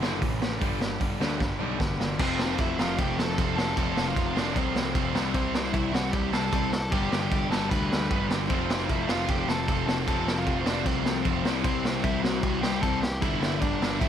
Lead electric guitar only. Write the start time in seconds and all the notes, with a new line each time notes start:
2.20 C4 C5
2.59 E4 E5
2.79 F4 F5
2.98 G4 G5
3.18 A4 A5
3.58 A4 A5
3.77 A4 A5
4.07 F4 F5
4.38 D4 D5
4.58 C4 C5
5.34 C4 C5
5.73 E4 E5
5.93 F#4 F#5
6.11 G4 G5
6.33 A4 A5
6.72 A4 A5
6.91 G4 G5
7.20 G4 G5
7.50 A4 A5
7.69 B4 B5
8.48 C4 C5
8.88 E4 E5
9.09 F4 F5
9.29 G4 G5
9.49 A4 A5
9.88 A4 A5
10.07 A4 A5
10.37 F4 F5
10.61 C5
10.66 D4 D5
10.86 C4 C5
11.64 C4 C5
12.03 E4 E5
12.22 F#4 F#5
12.62 G4 G5
12.81 A4 A5
13.01 G4 G5
13.21 E4 E5
13.61 D4 D5
14.00 E4 E5